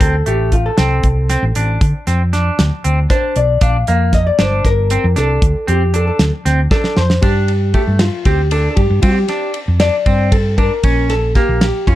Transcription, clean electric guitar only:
0.00 C4
0.26 A3
0.78 C4
1.30 C4
1.56 D4
2.07 C4
2.33 D4
2.84 C4
3.10 D4
3.62 D4
3.88 A#3
4.39 D4
4.91 C4
5.16 D4
5.67 C4
5.94 D4
6.45 C4
6.71 D4
7.23 D4
7.74 A3
8.26 C4
8.52 D4
9.03 C4
9.29 D4
9.81 D4
10.06 C4
10.58 D4
10.84 C#4
11.36 A#3
11.87 C#4

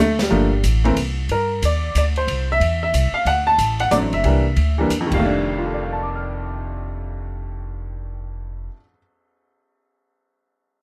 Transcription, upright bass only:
Already playing: D2
0.31 G1
0.64 A1
0.97 C2
1.29 G2
1.62 D#2
1.95 D2
2.27 C2
2.60 E2
2.94 C2
3.12 muted upright bass stroke
3.25 D2
3.58 A1
3.91 A#1
4.02 A1
4.13 F#1
4.24 C2
4.56 D2
4.90 E2
5.11 F1

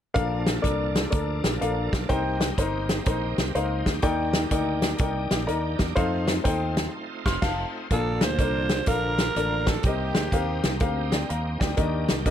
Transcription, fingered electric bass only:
0.16 A#1
0.64 C2
1.13 D2
1.45 A#1
1.62 A#1
1.93 B1
2.10 C2
2.58 G1
3.07 A#1
3.38 C2
3.55 C#2
3.86 D2
4.03 D#2
4.52 D2
5.00 C2
5.31 A#1
5.49 D#2
5.80 E2
5.97 F2
6.45 D#2
7.26 F1
7.42 F1
7.91 A#1
8.22 D2
8.39 C2
8.87 A#1
9.36 A1
9.84 C2
10.16 D2
10.33 D#2
10.64 C2
10.81 D2
11.30 D#2
11.61 D2
11.78 D#2
12.11 C2
12.26 D2

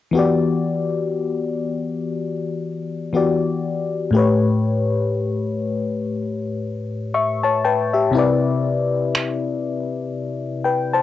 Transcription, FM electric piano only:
0.11 E3 B3 F#4
0.17 G4 D5
3.13 E3 B3 F#4 G4 D5
4.11 A2 A3 G4
4.17 B4 C#5
7.14 E5 C#6
7.43 C#5 A5
7.64 B4 G5 A5
7.93 G4 E5
8.11 C3 C4 E4
8.17 B4 D5
10.64 B4 G5
10.93 C5 A5

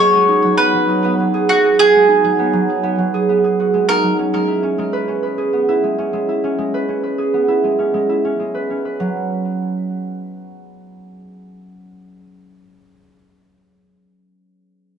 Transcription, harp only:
Already playing: F#3 B3 C#4 D#4 G#4
0.00 F#4
0.14 G#3
0.28 D#4
0.44 F#3
0.59 B3
0.74 F#3
0.89 D#4
1.04 B3
1.20 F#3
1.34 G#4
1.49 B3
1.64 G#4
1.79 F#4
1.94 G#3
2.08 D#4
2.24 F#3
2.39 B3
2.53 F#3
2.69 D#4
2.83 B3
2.98 F#3
3.14 G#4
3.29 B3
3.44 G#4
3.60 F#4
3.74 G#3
3.89 D#4
4.03 F#3
4.19 C#4
4.33 G#3
4.48 E4
4.63 C#4
4.78 G#3
4.93 B4
5.08 C#4
5.23 B4
5.38 G#4
5.53 B3
5.69 E4
5.84 G#3
5.98 C#4
6.13 G#3
6.29 E4
6.44 C#4
6.58 G#3
6.74 B4
6.88 C#4
7.03 B4
7.18 G#4
7.34 B3
7.48 E4
7.64 G#3
7.79 C#4
7.94 G#3
8.09 E4
8.25 C#4
8.40 G#3
8.55 B4
8.70 C#4
8.85 B4
9.00 F#3

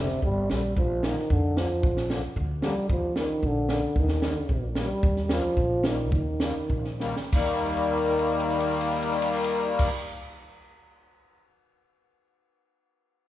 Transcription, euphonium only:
0.00 C3
0.24 G3
0.52 G3
0.78 F3
1.04 D#3
1.32 D3
1.58 F3
2.64 G3
2.90 F3
3.18 D#3
3.46 D3
3.99 D#3
4.80 G3
5.25 G3
5.34 F3
5.87 D#3
6.14 D#3
7.35 D#3

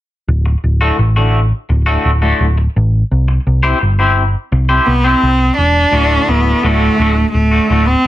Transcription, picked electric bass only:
0.28 D1
0.64 D1
0.99 A1
1.70 D1
2.05 D1
2.40 D1
2.76 A1
3.11 C2
3.47 C2
3.82 G1
4.52 C2
4.87 C2
5.23 C2
5.58 E1
5.92 D1
6.28 D1
6.64 D1
6.99 D1
7.34 D1
7.70 D1

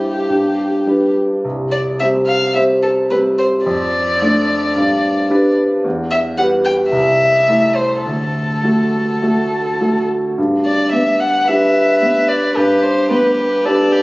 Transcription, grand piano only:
Already playing: G2 G3 E4 C5
0.30 G2
0.87 G3 D4 B4
1.45 C2
2.00 G3 C4 C5
2.56 G3 C4 C5
3.11 G3 C4 C5
3.66 F2
4.22 A3 D4 A4
4.76 G2
5.30 G3 D4 B4
5.84 E2
6.38 G3 G4 B4
6.92 C2
7.48 A3 E4 A4
8.06 D2
8.63 A3 F#4 A4
9.22 A3 F#4 A4
9.81 A3 F#4 A4
10.38 G2
11.48 G3 D4 B4
12.57 G2
13.66 G3 D4 B4

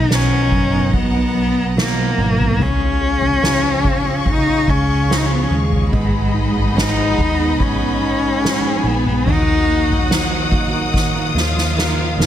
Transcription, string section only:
Already playing: D#5 F#5 A#5
2.59 G#4 F5 C#6
5.93 F#5 B5
9.28 F#3 D#5 D#6

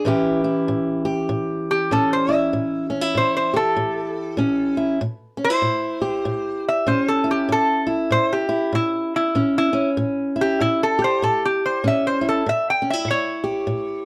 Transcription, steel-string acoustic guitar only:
0.05 A2 E3 C#4 E4 G4
0.44 E4
0.68 A2
1.05 G4
1.29 A2
1.91 A2 C#4
2.29 E4
2.53 A2
2.90 C#4
3.01 E4
3.15 A2
3.54 G4
3.76 A2
4.37 A2 C#4
4.77 E4
5.01 A2
5.37 C#4
5.50 E4
5.62 A2
6.02 G4
6.25 A2
6.87 A2 C#4
7.24 E4
7.49 A2
7.87 E4
8.11 A2
8.49 E4
8.73 A2
9.35 A2 C#4
9.73 C#4
9.97 A2
10.36 E4
10.60 A2
10.99 G4
11.22 A2
11.84 A2 C#4
12.21 E4
12.46 A2
12.82 C#4
12.93 E4
13.05 A2
13.44 G4
13.67 A2

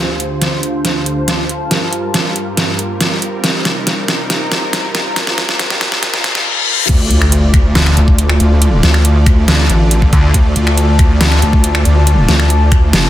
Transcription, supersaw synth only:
0.00 D2 D3 F4 C5
1.71 G2 G3 A#4
3.44 C3 D#4
5.16 G2 F4
6.89 D3 A3 F4 D5

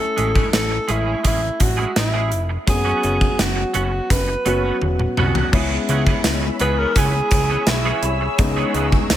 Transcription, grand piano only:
Already playing: A3 C#4 E4 G#5
2.67 F#3 B3 C#4 F#4
4.46 F#3 B3 C#4 F#4
5.52 G#3 B3 C#4 E4
8.38 G#3 B3 C#4 D#4

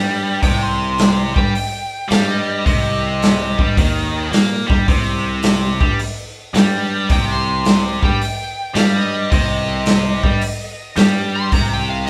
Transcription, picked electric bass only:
Already playing: G2
0.43 C2
1.36 G2
2.11 G2
2.67 C2
3.59 G2
3.77 D#2
4.32 A#2
4.70 G2
4.88 C2
5.81 G2
6.54 G2
7.10 C2
8.02 G2
8.75 G2
9.33 C2
10.24 G2
10.97 G2
11.52 C2

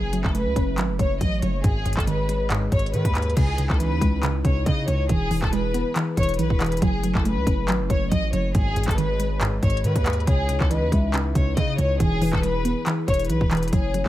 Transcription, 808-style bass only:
Already playing: F#1
0.25 F#1
0.46 C#2
0.56 F#1
0.78 G#1
0.89 F#1
0.99 F#1
1.21 A1
1.42 F#1
1.64 G#1
1.86 G#1
1.97 G#1
2.72 G#1
2.94 D#3
3.05 D#2
3.37 C#2
3.70 C#2
3.91 D#2
4.01 C#2
4.45 C#2
4.66 C#3
4.88 C#2
5.09 E1
5.31 E1
5.42 E1
6.17 E1
6.39 B1
6.50 E1
6.82 F#1
7.15 F#1
7.37 C#2
7.47 F#1
7.68 G#1
7.80 F#1
7.90 F#1
8.12 A1
8.33 F#1
8.55 G#1
8.76 G#1
8.88 G#1
9.63 G#1
9.84 D#3
9.96 D#2
10.27 C#2
10.60 C#2
10.82 D#2
10.92 C#2
11.35 C#2
11.57 C#3
11.78 C#2
12.00 E1
12.22 E1
12.33 E1
13.08 E1
13.30 B1
13.41 E1
13.73 F#1

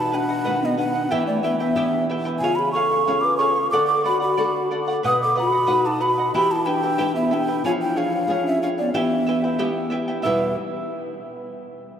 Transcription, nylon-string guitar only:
Already playing: B2
0.46 D#3 B3 F#4
1.12 E3
1.75 B3 E4 G4
2.40 C#3
3.07 C#4 F4
3.73 D3
4.38 D4 F#4 A4
5.04 B2
5.67 D#4 F#4 B4
6.34 E3
6.99 E4 G4 B4
7.64 F3
8.27 C#4 F4 G#4
8.94 E3
9.59 B3 E4 G4
10.24 E2 B2 G3 B3 E4 B4

